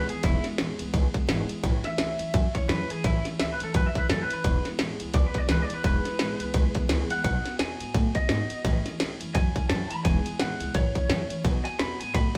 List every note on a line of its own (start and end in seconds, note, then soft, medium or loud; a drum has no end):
0.00 0.10 G#3 medium
0.09 0.24 E3 soft
0.09 0.25 G#3 medium
0.09 0.24 B3 medium
0.09 0.24 E4 medium
0.09 0.24 G#4 medium
0.09 muted upright bass stroke medium
0.09 ride medium
0.23 0.36 E1 loud
0.23 0.45 E2 medium
0.23 0.45 B2 medium
0.23 0.46 E3 medium
0.23 0.45 G#3 medium
0.23 0.44 B3 medium
0.23 0.44 E4 loud
0.23 0.43 E4 medium
0.23 kick loud
0.23 ride medium
0.44 0.58 E3 soft
0.44 0.58 G#3 medium
0.44 0.59 B3 medium
0.44 0.59 E4 medium
0.44 muted upright bass stroke medium
0.44 snare soft
0.44 ride medium
0.58 0.71 A1 medium
0.58 0.79 E2 medium
0.58 0.79 B2 medium
0.58 0.80 E3 medium
0.58 0.80 G#3 medium
0.58 0.80 B3 medium
0.58 0.79 E4 medium
0.58 snare loud
0.58 ride medium
0.79 0.89 C#2 medium
0.79 0.92 E3 soft
0.79 0.92 G#3 medium
0.79 0.94 B3 medium
0.79 0.94 E4 medium
0.79 ride medium
0.93 1.06 C#2 loud
0.93 1.14 E3 medium
0.93 1.15 G#3 medium
0.93 1.14 B3 medium
0.93 1.13 E4 medium
0.93 kick loud
0.93 ride medium
1.14 1.28 E3 medium
1.14 1.28 G#3 medium
1.14 1.28 B3 medium
1.14 1.29 E4 medium
1.14 muted upright bass stroke medium
1.14 kick medium
1.14 ride medium
1.27 1.41 G#1 medium
1.27 1.49 E2 medium
1.27 1.50 B2 medium
1.27 1.50 E3 medium
1.27 1.49 G#3 loud
1.27 1.48 B3 loud
1.27 1.47 E4 loud
1.27 snare loud
1.27 ride medium
1.48 1.62 E3 soft
1.48 1.63 G#3 medium
1.48 1.64 B3 medium
1.48 1.63 E4 medium
1.48 muted upright bass stroke medium
1.48 ride medium
1.63 1.76 A1 loud
1.63 1.84 A2 medium
1.63 1.84 E3 medium
1.63 1.85 A3 loud
1.63 1.84 C#4 medium
1.63 1.82 E4 medium
1.63 kick loud
1.63 ride medium
1.83 1.97 A3 medium
1.83 1.98 C#4 medium
1.83 1.99 E4 medium
1.83 2.53 E5 loud
1.83 muted upright bass stroke medium
1.83 snare soft
1.83 ride medium
1.97 2.11 C#2 loud
1.97 2.19 A2 medium
1.97 2.19 E3 medium
1.97 2.20 A3 medium
1.97 2.19 C#4 medium
1.97 2.17 E4 medium
1.97 snare loud
1.97 ride medium
2.18 2.28 F#2 medium
2.18 2.33 A3 soft
2.18 2.33 C#4 soft
2.18 2.33 E4 medium
2.18 ride medium
2.32 2.47 F#2 loud
2.32 2.54 E3 medium
2.32 2.55 A3 medium
2.32 2.55 C#4 medium
2.32 2.53 E4 medium
2.32 kick loud
2.32 ride medium
2.54 2.68 A3 soft
2.54 2.69 C#4 medium
2.54 2.69 E4 medium
2.54 2.69 C#5 loud
2.54 muted upright bass stroke medium
2.54 kick medium
2.54 ride medium
2.68 2.81 F#2 medium
2.68 2.90 A2 medium
2.68 2.90 E3 medium
2.68 2.90 A3 medium
2.68 2.89 C#4 loud
2.68 2.87 E4 loud
2.68 2.91 B4 loud
2.68 snare loud
2.68 ride medium
2.88 3.03 A3 soft
2.88 3.04 C#4 soft
2.88 3.04 E4 medium
2.88 3.04 G#4 loud
2.88 muted upright bass stroke medium
2.88 ride medium
3.04 3.17 A1 medium
3.04 3.25 A2 medium
3.04 3.25 E3 medium
3.04 3.25 A3 medium
3.04 3.24 C#4 medium
3.04 3.25 E4 loud
3.04 3.23 E4 medium
3.04 kick loud
3.04 ride medium
3.24 3.39 A3 medium
3.24 3.40 C#4 medium
3.24 3.39 E4 medium
3.24 muted upright bass stroke medium
3.24 snare soft
3.24 ride medium
3.39 3.52 C#2 loud
3.39 3.60 A2 medium
3.39 3.61 E3 medium
3.39 3.61 A3 medium
3.39 3.59 C#4 medium
3.39 3.58 E4 medium
3.39 3.51 E5 loud
3.39 snare loud
3.39 ride medium
3.52 3.63 B4 medium
3.59 3.69 F#2 medium
3.59 3.73 A3 medium
3.59 3.74 C#4 soft
3.59 3.74 E4 medium
3.59 ride medium
3.63 3.75 A4 loud
3.73 3.87 F#2 loud
3.73 3.95 E3 medium
3.73 3.95 A3 medium
3.73 3.95 C#4 medium
3.73 3.93 E4 medium
3.73 3.86 B4 loud
3.73 kick loud
3.73 ride medium
3.86 3.98 E5 medium
3.94 4.09 A3 medium
3.94 4.09 C#4 medium
3.94 4.09 E4 medium
3.94 4.09 B4 medium
3.94 muted upright bass stroke medium
3.94 kick medium
3.94 ride medium
4.09 4.22 F#2 medium
4.09 4.30 A2 medium
4.09 4.30 E3 medium
4.09 4.30 A3 medium
4.09 4.30 C#4 medium
4.09 4.28 E4 medium
4.09 4.22 A4 loud
4.09 snare loud
4.09 ride medium
4.22 4.32 B4 loud
4.30 4.45 A3 soft
4.30 4.45 C#4 medium
4.30 4.44 E4 medium
4.30 4.67 B4 loud
4.30 muted upright bass stroke medium
4.30 ride medium
4.43 4.57 E1 loud
4.43 4.65 E2 medium
4.43 4.65 B2 medium
4.43 4.65 E3 medium
4.43 4.66 G#3 medium
4.43 4.65 B3 medium
4.43 4.64 E4 medium
4.43 kick loud
4.43 ride medium
4.65 4.78 E3 soft
4.65 4.78 G#3 medium
4.65 4.79 B3 medium
4.65 4.79 E4 medium
4.65 muted upright bass stroke medium
4.65 snare soft
4.65 ride medium
4.78 4.92 A1 medium
4.78 5.00 E2 medium
4.78 5.00 B2 loud
4.78 5.00 E3 medium
4.78 5.00 G#3 medium
4.78 4.99 B3 medium
4.78 4.98 E4 loud
4.78 snare loud
4.78 ride medium
4.99 5.09 C#2 medium
4.99 5.12 E3 medium
4.99 5.13 G#3 medium
4.99 5.14 B3 medium
4.99 5.14 E4 medium
4.99 ride medium
5.13 5.27 C#2 medium
5.13 5.35 E3 medium
5.13 5.35 G#3 medium
5.13 5.34 B3 medium
5.13 5.33 E4 medium
5.13 5.26 D5 loud
5.13 kick loud
5.13 ride medium
5.26 5.38 B4 medium
5.34 5.48 E3 medium
5.34 5.48 G#3 medium
5.34 5.49 B3 medium
5.34 5.49 E4 medium
5.34 muted upright bass stroke medium
5.34 kick medium
5.34 ride medium
5.38 5.49 D5 medium
5.48 5.62 C#2 medium
5.48 5.70 E2 medium
5.48 5.70 B2 medium
5.48 5.70 E3 loud
5.48 5.69 G#3 medium
5.48 5.69 B3 loud
5.48 5.67 E4 loud
5.48 5.62 B4 loud
5.48 snare loud
5.48 ride medium
5.62 5.74 D5 medium
5.69 5.83 E3 soft
5.69 5.84 G#3 soft
5.69 5.84 B3 soft
5.69 5.84 E4 medium
5.69 muted upright bass stroke medium
5.69 ride medium
5.74 5.84 B4 loud
5.83 5.97 E1 loud
5.83 6.05 E2 medium
5.83 6.05 B2 medium
5.83 6.05 E3 medium
5.83 6.06 G#3 medium
5.83 6.04 B3 medium
5.83 6.03 E4 loud
5.83 6.87 B4 loud
5.83 kick loud
5.83 ride medium
6.04 6.18 E3 medium
6.04 6.19 G#3 medium
6.04 6.19 B3 medium
6.04 6.19 E4 medium
6.04 muted upright bass stroke medium
6.04 snare soft
6.04 ride medium
6.19 6.32 A1 loud
6.19 6.40 E2 medium
6.19 6.40 B2 medium
6.19 6.40 E3 medium
6.19 6.40 G#3 medium
6.19 6.39 B3 medium
6.19 6.38 E4 medium
6.19 snare loud
6.19 ride medium
6.39 6.49 C#2 medium
6.39 6.52 E3 medium
6.39 6.53 G#3 soft
6.39 6.54 B3 medium
6.39 6.54 E4 medium
6.39 ride medium
6.53 6.67 C#2 medium
6.53 6.75 E3 medium
6.53 6.75 G#3 medium
6.53 6.75 B3 medium
6.53 6.73 E4 medium
6.53 kick loud
6.53 ride loud
6.75 6.88 E3 medium
6.75 6.88 G#3 medium
6.75 6.89 B3 medium
6.75 6.90 E4 medium
6.75 muted upright bass stroke medium
6.75 kick medium
6.75 ride medium
6.88 7.02 C#2 loud
6.88 7.10 E2 loud
6.88 7.10 B2 loud
6.88 7.10 E3 medium
6.88 7.10 G#3 loud
6.88 7.10 B3 loud
6.88 7.08 E4 loud
6.88 snare loud
6.88 ride loud
7.09 7.23 E3 soft
7.09 7.24 G#3 soft
7.09 7.23 B3 medium
7.09 7.24 E4 medium
7.09 7.23 F#5 loud
7.09 muted upright bass stroke medium
7.09 ride medium
7.23 7.37 B1 loud
7.23 7.45 B2 medium
7.23 7.45 F#3 medium
7.23 7.45 B3 medium
7.23 7.45 D#4 medium
7.23 7.43 F#4 medium
7.23 7.58 F#5 loud
7.23 kick loud
7.23 ride medium
7.44 7.59 B3 medium
7.44 7.60 D#4 medium
7.44 7.59 F#4 medium
7.44 muted upright bass stroke medium
7.44 snare soft
7.44 ride medium
7.59 7.72 E2 medium
7.59 7.80 B2 medium
7.59 7.81 F#3 medium
7.59 7.81 B3 medium
7.59 7.79 D#4 medium
7.59 7.77 F#4 medium
7.59 8.14 G#5 loud
7.59 snare loud
7.59 ride medium
7.78 7.89 G#2 medium
7.78 7.94 B3 soft
7.78 7.95 D#4 soft
7.78 7.94 F#4 medium
7.78 ride medium
7.93 8.07 A2 loud
7.93 8.15 F#3 medium
7.93 8.16 B3 medium
7.93 8.16 D#4 medium
7.93 kick loud
7.93 ride medium
7.97 8.14 F#4 medium
8.15 8.30 B3 soft
8.15 8.31 D#4 medium
8.15 8.30 F#4 medium
8.15 9.17 D#5 loud
8.15 muted upright bass stroke medium
8.15 kick medium
8.15 ride medium
8.29 8.42 G#2 loud
8.29 8.51 B2 medium
8.29 8.51 F#3 medium
8.29 8.51 B3 medium
8.29 8.51 D#4 medium
8.29 8.49 F#4 medium
8.29 snare loud
8.29 ride medium
8.50 8.66 B3 soft
8.50 8.66 D#4 medium
8.50 8.65 F#4 medium
8.50 muted upright bass stroke medium
8.50 ride medium
8.64 8.77 A1 loud
8.64 8.86 A2 medium
8.64 8.86 E3 medium
8.64 8.86 A3 loud
8.64 8.86 C#4 loud
8.64 8.85 E4 medium
8.64 kick loud
8.64 ride medium
8.85 8.99 A3 medium
8.85 9.00 C#4 medium
8.85 9.00 E4 medium
8.85 muted upright bass stroke medium
8.85 snare soft
8.85 ride medium
8.99 9.12 C#2 loud
8.99 9.20 A2 medium
8.99 9.21 E3 medium
8.99 9.21 A3 medium
8.99 9.20 C#4 medium
8.99 9.19 E4 medium
8.99 snare loud
8.99 ride loud
9.20 9.29 F#2 medium
9.20 9.35 A3 medium
9.20 9.35 C#4 medium
9.20 9.35 E4 medium
9.20 ride medium
9.35 9.47 F#2 loud
9.35 9.56 E3 medium
9.35 9.56 A3 medium
9.35 9.55 C#4 medium
9.35 9.69 G#5 loud
9.35 kick loud
9.35 ride medium
9.39 9.54 E4 medium
9.55 9.70 A3 soft
9.55 9.70 C#4 medium
9.55 9.70 E4 medium
9.55 muted upright bass stroke medium
9.55 kick medium
9.55 ride medium
9.69 9.83 F#2 loud
9.69 9.90 A2 medium
9.69 9.91 E3 loud
9.69 9.91 A3 loud
9.69 9.91 C#4 loud
9.69 9.89 E4 medium
9.69 9.90 A5 loud
9.69 snare loud
9.69 ride medium
9.90 10.06 A3 soft
9.90 10.06 C#4 medium
9.90 10.05 E4 medium
9.90 10.04 B5 loud
9.90 muted upright bass stroke medium
9.90 ride medium
10.04 10.17 E1 loud
10.04 10.25 E2 medium
10.04 10.26 B2 medium
10.04 10.26 E3 medium
10.04 10.26 G#3 medium
10.04 10.25 B3 medium
10.04 10.23 E4 medium
10.04 10.39 G#5 loud
10.04 kick loud
10.04 ride medium
10.24 10.39 E3 medium
10.24 10.40 G#3 medium
10.24 10.40 B3 medium
10.24 10.39 E4 medium
10.24 muted upright bass stroke medium
10.24 ride medium
10.39 10.52 A1 loud
10.39 10.60 E2 medium
10.39 10.60 B2 medium
10.39 10.61 E3 medium
10.39 10.61 G#3 medium
10.39 10.60 B3 medium
10.39 10.58 E4 medium
10.39 10.74 F#5 loud
10.39 snare loud
10.39 ride medium
10.60 10.69 C#2 loud
10.60 10.73 E3 soft
10.60 10.75 G#3 soft
10.60 10.75 B3 medium
10.60 10.74 E4 medium
10.60 ride medium
10.74 10.87 A1 medium
10.74 10.95 E3 medium
10.74 10.96 A3 medium
10.74 10.95 C#4 medium
10.74 10.93 E4 medium
10.74 11.43 C#5 loud
10.74 kick loud
10.74 ride medium
10.94 11.09 A3 medium
10.94 11.09 C#4 medium
10.94 11.09 E4 medium
10.94 muted upright bass stroke medium
10.94 kick medium
10.94 ride medium
11.09 11.22 F#2 loud
11.09 11.30 A2 medium
11.09 11.30 E3 medium
11.09 11.31 A3 loud
11.09 11.29 C#4 loud
11.09 11.27 E4 loud
11.09 snare loud
11.09 ride medium
11.28 11.45 A3 soft
11.28 11.45 C#4 medium
11.28 11.44 E4 medium
11.28 muted upright bass stroke medium
11.28 ride medium
11.44 11.57 B1 loud
11.44 11.65 B2 medium
11.44 11.65 F#3 loud
11.44 11.66 B3 medium
11.44 11.65 D#4 loud
11.44 11.63 F#4 loud
11.44 kick loud
11.44 ride medium
11.64 11.79 B3 soft
11.64 11.79 D#4 medium
11.64 11.79 F#4 medium
11.64 11.79 G#5 loud
11.64 muted upright bass stroke medium
11.64 ride medium
11.78 11.92 E2 loud
11.78 12.00 B2 medium
11.78 12.00 F#3 medium
11.78 12.01 B3 medium
11.78 12.00 D#4 medium
11.78 11.98 F#4 medium
11.78 12.00 B5 loud
11.78 snare loud
11.78 ride medium
12.00 12.09 G#2 medium
12.00 12.13 B3 soft
12.00 12.15 D#4 medium
12.00 12.14 F#4 medium
12.00 12.14 G#5 loud
12.00 ride medium
12.13 12.27 A2 loud
12.13 12.35 F#3 medium
12.13 12.35 B3 medium
12.13 12.34 D#4 medium
12.13 12.32 F#4 medium
12.13 12.35 B5 loud
12.13 kick loud
12.13 ride loud
12.34 12.38 F#4 medium